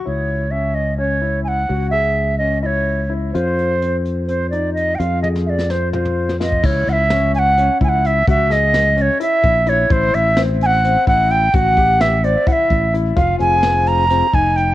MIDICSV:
0, 0, Header, 1, 6, 480
1, 0, Start_track
1, 0, Tempo, 470219
1, 60, Time_signature, 7, 3, 24, 8
1, 6300, Tempo, 466563
1, 15122, End_track
2, 0, Start_track
2, 0, Title_t, "Flute"
2, 0, Program_c, 0, 73
2, 52, Note_on_c, 0, 73, 61
2, 519, Note_on_c, 0, 76, 64
2, 535, Note_off_c, 0, 73, 0
2, 760, Note_on_c, 0, 75, 66
2, 776, Note_off_c, 0, 76, 0
2, 993, Note_off_c, 0, 75, 0
2, 999, Note_on_c, 0, 73, 60
2, 1454, Note_off_c, 0, 73, 0
2, 1470, Note_on_c, 0, 80, 72
2, 1512, Note_on_c, 0, 78, 78
2, 1522, Note_off_c, 0, 80, 0
2, 1930, Note_off_c, 0, 78, 0
2, 1945, Note_on_c, 0, 76, 78
2, 2408, Note_off_c, 0, 76, 0
2, 2431, Note_on_c, 0, 75, 67
2, 2667, Note_off_c, 0, 75, 0
2, 2674, Note_on_c, 0, 75, 59
2, 2717, Note_on_c, 0, 73, 64
2, 2727, Note_off_c, 0, 75, 0
2, 3189, Note_off_c, 0, 73, 0
2, 3392, Note_on_c, 0, 72, 74
2, 4048, Note_off_c, 0, 72, 0
2, 4358, Note_on_c, 0, 72, 61
2, 4593, Note_off_c, 0, 72, 0
2, 4597, Note_on_c, 0, 74, 62
2, 4832, Note_off_c, 0, 74, 0
2, 4838, Note_on_c, 0, 75, 68
2, 5055, Note_on_c, 0, 79, 53
2, 5070, Note_off_c, 0, 75, 0
2, 5092, Note_on_c, 0, 77, 72
2, 5107, Note_off_c, 0, 79, 0
2, 5328, Note_off_c, 0, 77, 0
2, 5334, Note_on_c, 0, 75, 63
2, 5395, Note_off_c, 0, 75, 0
2, 5577, Note_on_c, 0, 76, 59
2, 5611, Note_on_c, 0, 74, 64
2, 5622, Note_off_c, 0, 76, 0
2, 5826, Note_on_c, 0, 72, 61
2, 5841, Note_off_c, 0, 74, 0
2, 6053, Note_off_c, 0, 72, 0
2, 6059, Note_on_c, 0, 72, 51
2, 6507, Note_off_c, 0, 72, 0
2, 6554, Note_on_c, 0, 75, 62
2, 6797, Note_on_c, 0, 73, 75
2, 6813, Note_off_c, 0, 75, 0
2, 7041, Note_on_c, 0, 78, 85
2, 7056, Note_off_c, 0, 73, 0
2, 7076, Note_on_c, 0, 76, 93
2, 7086, Note_off_c, 0, 78, 0
2, 7507, Note_off_c, 0, 76, 0
2, 7513, Note_on_c, 0, 80, 90
2, 7552, Note_on_c, 0, 78, 98
2, 7562, Note_off_c, 0, 80, 0
2, 7956, Note_off_c, 0, 78, 0
2, 8014, Note_on_c, 0, 80, 75
2, 8064, Note_on_c, 0, 78, 81
2, 8075, Note_off_c, 0, 80, 0
2, 8245, Note_on_c, 0, 76, 80
2, 8260, Note_off_c, 0, 78, 0
2, 8476, Note_off_c, 0, 76, 0
2, 8481, Note_on_c, 0, 76, 92
2, 8716, Note_on_c, 0, 75, 91
2, 8732, Note_off_c, 0, 76, 0
2, 9192, Note_off_c, 0, 75, 0
2, 9192, Note_on_c, 0, 75, 78
2, 9228, Note_on_c, 0, 73, 85
2, 9238, Note_off_c, 0, 75, 0
2, 9429, Note_off_c, 0, 73, 0
2, 9434, Note_on_c, 0, 76, 93
2, 9919, Note_on_c, 0, 73, 84
2, 9935, Note_off_c, 0, 76, 0
2, 10157, Note_on_c, 0, 72, 85
2, 10173, Note_off_c, 0, 73, 0
2, 10389, Note_on_c, 0, 76, 97
2, 10404, Note_off_c, 0, 72, 0
2, 10661, Note_off_c, 0, 76, 0
2, 10885, Note_on_c, 0, 80, 103
2, 10920, Note_on_c, 0, 78, 112
2, 10931, Note_off_c, 0, 80, 0
2, 11322, Note_off_c, 0, 78, 0
2, 11348, Note_on_c, 0, 78, 105
2, 11587, Note_on_c, 0, 79, 96
2, 11603, Note_off_c, 0, 78, 0
2, 11831, Note_on_c, 0, 78, 110
2, 11847, Note_off_c, 0, 79, 0
2, 12308, Note_on_c, 0, 76, 92
2, 12323, Note_off_c, 0, 78, 0
2, 12547, Note_on_c, 0, 74, 83
2, 12562, Note_off_c, 0, 76, 0
2, 12785, Note_on_c, 0, 78, 76
2, 12801, Note_off_c, 0, 74, 0
2, 12835, Note_on_c, 0, 76, 83
2, 12845, Note_off_c, 0, 78, 0
2, 13265, Note_off_c, 0, 76, 0
2, 13496, Note_on_c, 0, 77, 90
2, 13723, Note_off_c, 0, 77, 0
2, 13735, Note_on_c, 0, 80, 103
2, 14228, Note_on_c, 0, 82, 110
2, 14243, Note_off_c, 0, 80, 0
2, 14708, Note_on_c, 0, 80, 94
2, 14724, Note_off_c, 0, 82, 0
2, 14932, Note_on_c, 0, 79, 85
2, 14948, Note_off_c, 0, 80, 0
2, 15122, Note_off_c, 0, 79, 0
2, 15122, End_track
3, 0, Start_track
3, 0, Title_t, "Tonewheel organ"
3, 0, Program_c, 1, 16
3, 13726, Note_on_c, 1, 60, 60
3, 13732, Note_on_c, 1, 65, 55
3, 13745, Note_on_c, 1, 68, 69
3, 14408, Note_off_c, 1, 60, 0
3, 14411, Note_off_c, 1, 65, 0
3, 14417, Note_off_c, 1, 68, 0
3, 14461, Note_on_c, 1, 60, 70
3, 14469, Note_on_c, 1, 65, 66
3, 14476, Note_on_c, 1, 68, 82
3, 14631, Note_off_c, 1, 60, 0
3, 14635, Note_off_c, 1, 65, 0
3, 14639, Note_off_c, 1, 68, 0
3, 15122, End_track
4, 0, Start_track
4, 0, Title_t, "Grand piano"
4, 0, Program_c, 2, 0
4, 53, Note_on_c, 2, 64, 60
4, 434, Note_off_c, 2, 64, 0
4, 530, Note_on_c, 2, 61, 61
4, 912, Note_off_c, 2, 61, 0
4, 1003, Note_on_c, 2, 61, 59
4, 1199, Note_off_c, 2, 61, 0
4, 1242, Note_on_c, 2, 64, 58
4, 1628, Note_off_c, 2, 64, 0
4, 1726, Note_on_c, 2, 66, 60
4, 1921, Note_off_c, 2, 66, 0
4, 1967, Note_on_c, 2, 68, 57
4, 2351, Note_off_c, 2, 68, 0
4, 2451, Note_on_c, 2, 61, 55
4, 2644, Note_off_c, 2, 61, 0
4, 2682, Note_on_c, 2, 64, 55
4, 3069, Note_off_c, 2, 64, 0
4, 3160, Note_on_c, 2, 64, 62
4, 3358, Note_off_c, 2, 64, 0
4, 3414, Note_on_c, 2, 65, 67
4, 3797, Note_off_c, 2, 65, 0
4, 3899, Note_on_c, 2, 60, 64
4, 4280, Note_off_c, 2, 60, 0
4, 4380, Note_on_c, 2, 60, 57
4, 4571, Note_off_c, 2, 60, 0
4, 4622, Note_on_c, 2, 63, 55
4, 5002, Note_off_c, 2, 63, 0
4, 5101, Note_on_c, 2, 65, 66
4, 5291, Note_off_c, 2, 65, 0
4, 5336, Note_on_c, 2, 68, 60
4, 5718, Note_off_c, 2, 68, 0
4, 5814, Note_on_c, 2, 60, 58
4, 6007, Note_off_c, 2, 60, 0
4, 6057, Note_on_c, 2, 65, 62
4, 6438, Note_off_c, 2, 65, 0
4, 6539, Note_on_c, 2, 65, 59
4, 6731, Note_off_c, 2, 65, 0
4, 6775, Note_on_c, 2, 64, 76
4, 7159, Note_off_c, 2, 64, 0
4, 7261, Note_on_c, 2, 61, 77
4, 7642, Note_off_c, 2, 61, 0
4, 7745, Note_on_c, 2, 61, 82
4, 7935, Note_off_c, 2, 61, 0
4, 7984, Note_on_c, 2, 64, 76
4, 8364, Note_off_c, 2, 64, 0
4, 8468, Note_on_c, 2, 66, 84
4, 8657, Note_off_c, 2, 66, 0
4, 8698, Note_on_c, 2, 68, 72
4, 9080, Note_off_c, 2, 68, 0
4, 9176, Note_on_c, 2, 61, 72
4, 9370, Note_off_c, 2, 61, 0
4, 9417, Note_on_c, 2, 64, 80
4, 9800, Note_off_c, 2, 64, 0
4, 9896, Note_on_c, 2, 64, 76
4, 10090, Note_off_c, 2, 64, 0
4, 10134, Note_on_c, 2, 64, 87
4, 10518, Note_off_c, 2, 64, 0
4, 10617, Note_on_c, 2, 60, 94
4, 10999, Note_off_c, 2, 60, 0
4, 11106, Note_on_c, 2, 60, 86
4, 11295, Note_off_c, 2, 60, 0
4, 11339, Note_on_c, 2, 64, 77
4, 11721, Note_off_c, 2, 64, 0
4, 11820, Note_on_c, 2, 66, 88
4, 12012, Note_off_c, 2, 66, 0
4, 12062, Note_on_c, 2, 67, 77
4, 12443, Note_off_c, 2, 67, 0
4, 12539, Note_on_c, 2, 60, 76
4, 12731, Note_off_c, 2, 60, 0
4, 12774, Note_on_c, 2, 64, 74
4, 13157, Note_off_c, 2, 64, 0
4, 13260, Note_on_c, 2, 64, 73
4, 13452, Note_off_c, 2, 64, 0
4, 13493, Note_on_c, 2, 65, 88
4, 13877, Note_off_c, 2, 65, 0
4, 13969, Note_on_c, 2, 60, 84
4, 14355, Note_off_c, 2, 60, 0
4, 14458, Note_on_c, 2, 60, 76
4, 14651, Note_off_c, 2, 60, 0
4, 14696, Note_on_c, 2, 63, 79
4, 15079, Note_off_c, 2, 63, 0
4, 15122, End_track
5, 0, Start_track
5, 0, Title_t, "Fingered electric bass"
5, 0, Program_c, 3, 33
5, 68, Note_on_c, 3, 37, 55
5, 1709, Note_off_c, 3, 37, 0
5, 1733, Note_on_c, 3, 37, 58
5, 3384, Note_off_c, 3, 37, 0
5, 3418, Note_on_c, 3, 41, 61
5, 5067, Note_off_c, 3, 41, 0
5, 5101, Note_on_c, 3, 41, 66
5, 6749, Note_off_c, 3, 41, 0
5, 6777, Note_on_c, 3, 37, 96
5, 6988, Note_off_c, 3, 37, 0
5, 7022, Note_on_c, 3, 37, 83
5, 7855, Note_off_c, 3, 37, 0
5, 7984, Note_on_c, 3, 37, 76
5, 8400, Note_off_c, 3, 37, 0
5, 8463, Note_on_c, 3, 37, 97
5, 9295, Note_off_c, 3, 37, 0
5, 9661, Note_on_c, 3, 34, 80
5, 10078, Note_off_c, 3, 34, 0
5, 10141, Note_on_c, 3, 33, 100
5, 10351, Note_off_c, 3, 33, 0
5, 10392, Note_on_c, 3, 33, 82
5, 11220, Note_off_c, 3, 33, 0
5, 11341, Note_on_c, 3, 33, 83
5, 11758, Note_off_c, 3, 33, 0
5, 11821, Note_on_c, 3, 33, 101
5, 12653, Note_off_c, 3, 33, 0
5, 13023, Note_on_c, 3, 33, 78
5, 13439, Note_off_c, 3, 33, 0
5, 13500, Note_on_c, 3, 29, 92
5, 13710, Note_off_c, 3, 29, 0
5, 13739, Note_on_c, 3, 29, 80
5, 14572, Note_off_c, 3, 29, 0
5, 14697, Note_on_c, 3, 29, 79
5, 15116, Note_off_c, 3, 29, 0
5, 15122, End_track
6, 0, Start_track
6, 0, Title_t, "Drums"
6, 3415, Note_on_c, 9, 42, 58
6, 3517, Note_off_c, 9, 42, 0
6, 3659, Note_on_c, 9, 42, 43
6, 3762, Note_off_c, 9, 42, 0
6, 3900, Note_on_c, 9, 42, 58
6, 4002, Note_off_c, 9, 42, 0
6, 4139, Note_on_c, 9, 42, 45
6, 4241, Note_off_c, 9, 42, 0
6, 4375, Note_on_c, 9, 42, 60
6, 4477, Note_off_c, 9, 42, 0
6, 4619, Note_on_c, 9, 42, 45
6, 4721, Note_off_c, 9, 42, 0
6, 4869, Note_on_c, 9, 42, 49
6, 4971, Note_off_c, 9, 42, 0
6, 5105, Note_on_c, 9, 42, 65
6, 5207, Note_off_c, 9, 42, 0
6, 5348, Note_on_c, 9, 48, 42
6, 5450, Note_off_c, 9, 48, 0
6, 5467, Note_on_c, 9, 38, 37
6, 5569, Note_off_c, 9, 38, 0
6, 5703, Note_on_c, 9, 38, 39
6, 5805, Note_off_c, 9, 38, 0
6, 5819, Note_on_c, 9, 38, 48
6, 5921, Note_off_c, 9, 38, 0
6, 6058, Note_on_c, 9, 45, 55
6, 6160, Note_off_c, 9, 45, 0
6, 6181, Note_on_c, 9, 45, 43
6, 6283, Note_off_c, 9, 45, 0
6, 6425, Note_on_c, 9, 38, 49
6, 6528, Note_off_c, 9, 38, 0
6, 6544, Note_on_c, 9, 38, 67
6, 6647, Note_off_c, 9, 38, 0
6, 6661, Note_on_c, 9, 36, 53
6, 6764, Note_off_c, 9, 36, 0
6, 6775, Note_on_c, 9, 49, 97
6, 6780, Note_on_c, 9, 36, 104
6, 6878, Note_off_c, 9, 49, 0
6, 6883, Note_off_c, 9, 36, 0
6, 7026, Note_on_c, 9, 42, 58
6, 7129, Note_off_c, 9, 42, 0
6, 7258, Note_on_c, 9, 38, 105
6, 7258, Note_on_c, 9, 42, 71
6, 7361, Note_off_c, 9, 38, 0
6, 7361, Note_off_c, 9, 42, 0
6, 7505, Note_on_c, 9, 42, 58
6, 7608, Note_off_c, 9, 42, 0
6, 7744, Note_on_c, 9, 42, 74
6, 7847, Note_off_c, 9, 42, 0
6, 7984, Note_on_c, 9, 36, 78
6, 7985, Note_on_c, 9, 42, 59
6, 8087, Note_off_c, 9, 36, 0
6, 8088, Note_off_c, 9, 42, 0
6, 8225, Note_on_c, 9, 42, 60
6, 8328, Note_off_c, 9, 42, 0
6, 8463, Note_on_c, 9, 36, 104
6, 8466, Note_on_c, 9, 42, 86
6, 8566, Note_off_c, 9, 36, 0
6, 8569, Note_off_c, 9, 42, 0
6, 8703, Note_on_c, 9, 38, 36
6, 8703, Note_on_c, 9, 42, 64
6, 8806, Note_off_c, 9, 38, 0
6, 8806, Note_off_c, 9, 42, 0
6, 8943, Note_on_c, 9, 38, 98
6, 8943, Note_on_c, 9, 42, 84
6, 9046, Note_off_c, 9, 38, 0
6, 9046, Note_off_c, 9, 42, 0
6, 9183, Note_on_c, 9, 42, 63
6, 9286, Note_off_c, 9, 42, 0
6, 9420, Note_on_c, 9, 42, 87
6, 9523, Note_off_c, 9, 42, 0
6, 9658, Note_on_c, 9, 42, 63
6, 9659, Note_on_c, 9, 36, 74
6, 9761, Note_off_c, 9, 42, 0
6, 9762, Note_off_c, 9, 36, 0
6, 9893, Note_on_c, 9, 42, 63
6, 9996, Note_off_c, 9, 42, 0
6, 10136, Note_on_c, 9, 42, 82
6, 10140, Note_on_c, 9, 36, 115
6, 10239, Note_off_c, 9, 42, 0
6, 10243, Note_off_c, 9, 36, 0
6, 10379, Note_on_c, 9, 42, 61
6, 10482, Note_off_c, 9, 42, 0
6, 10617, Note_on_c, 9, 38, 102
6, 10617, Note_on_c, 9, 42, 76
6, 10720, Note_off_c, 9, 38, 0
6, 10720, Note_off_c, 9, 42, 0
6, 10866, Note_on_c, 9, 42, 61
6, 10969, Note_off_c, 9, 42, 0
6, 11107, Note_on_c, 9, 42, 79
6, 11210, Note_off_c, 9, 42, 0
6, 11341, Note_on_c, 9, 36, 80
6, 11343, Note_on_c, 9, 42, 54
6, 11444, Note_off_c, 9, 36, 0
6, 11446, Note_off_c, 9, 42, 0
6, 11580, Note_on_c, 9, 42, 58
6, 11683, Note_off_c, 9, 42, 0
6, 11818, Note_on_c, 9, 42, 80
6, 11821, Note_on_c, 9, 36, 103
6, 11921, Note_off_c, 9, 42, 0
6, 11924, Note_off_c, 9, 36, 0
6, 12061, Note_on_c, 9, 36, 76
6, 12061, Note_on_c, 9, 42, 58
6, 12164, Note_off_c, 9, 36, 0
6, 12164, Note_off_c, 9, 42, 0
6, 12303, Note_on_c, 9, 38, 102
6, 12303, Note_on_c, 9, 42, 75
6, 12405, Note_off_c, 9, 38, 0
6, 12405, Note_off_c, 9, 42, 0
6, 12541, Note_on_c, 9, 42, 65
6, 12644, Note_off_c, 9, 42, 0
6, 12774, Note_on_c, 9, 42, 82
6, 12778, Note_on_c, 9, 36, 108
6, 12877, Note_off_c, 9, 42, 0
6, 12881, Note_off_c, 9, 36, 0
6, 13018, Note_on_c, 9, 36, 78
6, 13021, Note_on_c, 9, 42, 63
6, 13121, Note_off_c, 9, 36, 0
6, 13124, Note_off_c, 9, 42, 0
6, 13264, Note_on_c, 9, 42, 66
6, 13366, Note_off_c, 9, 42, 0
6, 13496, Note_on_c, 9, 36, 116
6, 13496, Note_on_c, 9, 42, 85
6, 13598, Note_off_c, 9, 42, 0
6, 13599, Note_off_c, 9, 36, 0
6, 13737, Note_on_c, 9, 42, 65
6, 13840, Note_off_c, 9, 42, 0
6, 13972, Note_on_c, 9, 38, 95
6, 13972, Note_on_c, 9, 42, 83
6, 14075, Note_off_c, 9, 38, 0
6, 14075, Note_off_c, 9, 42, 0
6, 14215, Note_on_c, 9, 42, 66
6, 14318, Note_off_c, 9, 42, 0
6, 14457, Note_on_c, 9, 42, 77
6, 14560, Note_off_c, 9, 42, 0
6, 14698, Note_on_c, 9, 42, 61
6, 14699, Note_on_c, 9, 36, 70
6, 14801, Note_off_c, 9, 42, 0
6, 14802, Note_off_c, 9, 36, 0
6, 14942, Note_on_c, 9, 42, 61
6, 15045, Note_off_c, 9, 42, 0
6, 15122, End_track
0, 0, End_of_file